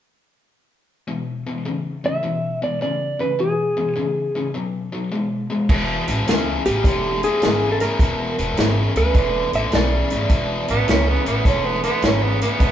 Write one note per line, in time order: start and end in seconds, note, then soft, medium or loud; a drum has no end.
1.08 1.42 E2 medium
1.08 1.42 B2 medium
1.47 1.64 E2 medium
1.47 1.64 B2 medium
1.65 2.00 E2 medium
1.65 2.00 C#3 medium
2.04 2.21 E2 medium
2.04 2.22 C#3 medium
2.04 2.63 E5 medium
2.23 2.58 E2 medium
2.23 2.58 B2 medium
2.62 2.79 E2 medium
2.62 2.79 B2 medium
2.62 2.81 D5 medium
2.81 3.16 E2 medium
2.81 3.16 C#3 medium
2.81 3.21 D5 medium
3.19 3.37 E2 medium
3.19 3.37 C#3 medium
3.19 3.40 B4 medium
3.39 3.73 E2 medium
3.39 3.74 B2 medium
3.39 4.51 G#4 medium
3.77 3.94 E2 medium
3.77 3.94 B2 medium
3.96 4.31 E2 medium
3.96 4.31 C#3 medium
4.35 4.52 E2 medium
4.35 4.53 C#3 medium
4.54 4.89 B2 medium
4.54 4.89 F#3 medium
4.92 5.10 B2 medium
4.92 5.10 F#3 medium
5.12 5.46 B2 medium
5.12 5.46 G#3 medium
5.50 5.67 B2 medium
5.50 5.67 G#3 medium
5.69 5.96 E1 medium
5.69 6.04 E2 medium
5.69 6.04 B2 medium
5.69 kick loud
5.69 crash medium
6.08 6.21 A1 medium
6.08 6.25 E2 medium
6.08 6.25 B2 medium
6.08 closed hi-hat medium
6.27 6.54 C#2 medium
6.27 6.62 E2 medium
6.27 6.62 C#3 medium
6.27 snare loud
6.27 closed hi-hat medium
6.65 6.79 A1 medium
6.65 6.83 E2 medium
6.65 6.83 C#3 medium
6.65 7.24 G4 medium
6.65 closed hi-hat medium
6.84 7.25 E1 medium
6.84 7.20 E2 medium
6.84 7.20 D3 medium
6.84 kick loud
6.84 closed hi-hat medium
7.23 7.41 E2 medium
7.23 7.41 D3 medium
7.23 7.72 G#4 medium
7.23 closed hi-hat medium
7.42 7.82 G#1 medium
7.42 7.77 E2 medium
7.42 7.77 C#3 medium
7.42 snare loud
7.42 closed hi-hat medium
7.72 7.81 A4 medium
7.80 7.98 E2 medium
7.80 7.99 C#3 medium
7.80 8.92 A#4 medium
7.80 closed hi-hat medium
7.99 8.26 E1 medium
7.99 8.35 E2 medium
7.99 8.35 B2 medium
7.99 kick loud
7.99 closed hi-hat medium
8.38 8.52 E1 medium
8.38 8.55 E2 medium
8.38 8.56 B2 medium
8.38 closed hi-hat medium
8.57 8.84 G#1 medium
8.57 8.92 E2 medium
8.57 8.92 C#3 medium
8.57 snare loud
8.57 closed hi-hat medium
8.96 9.09 D2 medium
8.96 9.13 E2 medium
8.96 9.13 C#3 medium
8.96 9.50 B4 medium
8.96 closed hi-hat medium
9.15 9.42 E1 medium
9.15 9.50 E2 medium
9.15 9.50 D3 medium
9.15 kick loud
9.15 closed hi-hat medium
9.53 9.67 A1 medium
9.53 9.71 E2 medium
9.53 9.71 D3 medium
9.53 9.61 E5 medium
9.53 closed hi-hat medium
9.72 9.99 B1 medium
9.72 10.08 E2 medium
9.72 10.08 C#3 medium
9.72 10.85 D5 medium
9.72 snare loud
9.72 closed hi-hat medium
10.10 10.24 G#1 medium
10.10 10.28 E2 medium
10.10 10.28 C#3 medium
10.10 closed hi-hat medium
10.29 10.57 E1 medium
10.29 10.64 E2 medium
10.29 10.65 B2 medium
10.29 kick loud
10.29 closed hi-hat medium
10.68 10.82 A1 medium
10.68 10.85 E2 medium
10.68 10.86 B2 medium
10.68 10.88 B3 loud
10.68 closed hi-hat medium
10.87 11.15 C#2 medium
10.87 11.22 E2 medium
10.87 11.22 C#3 medium
10.87 11.10 C#4 medium
10.87 snare loud
10.87 closed hi-hat medium
11.09 11.26 B3 medium
11.25 11.40 A1 medium
11.25 11.43 E2 medium
11.25 11.43 C#3 medium
11.25 11.48 B3 medium
11.25 closed hi-hat medium
11.45 11.85 E1 medium
11.45 11.80 E2 medium
11.45 11.80 D3 medium
11.45 11.67 C#4 medium
11.45 kick loud
11.45 closed hi-hat medium
11.65 11.83 B3 medium
11.84 12.01 E2 medium
11.84 12.01 D3 medium
11.84 12.06 B3 medium
11.84 closed hi-hat medium
12.02 12.43 G#1 medium
12.02 12.38 E2 medium
12.02 12.38 C#3 medium
12.02 12.24 C#4 medium
12.02 snare loud
12.02 closed hi-hat medium
12.23 12.41 B3 medium
12.41 12.59 E2 medium
12.41 12.59 C#3 medium
12.41 12.72 B3 loud
12.41 closed hi-hat medium
12.60 12.72 E1 medium
12.60 12.72 E2 medium
12.60 12.72 B2 medium
12.60 kick loud
12.60 closed hi-hat medium